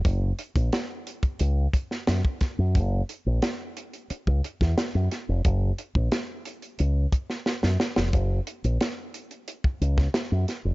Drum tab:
HH |x-xxx-xxx-x-x-x-|x-x-x-xxx-x-x-x-|x-x-x-xxx-x-----|x-xxx-xxx-x-x-x-|
SD |----o------oo-o-|----o------oo-o-|----o------ooooo|----o------oo-o-|
BD |o--o---o--o--oo-|o--------o-o----|o--o------o-----|o--------o-o----|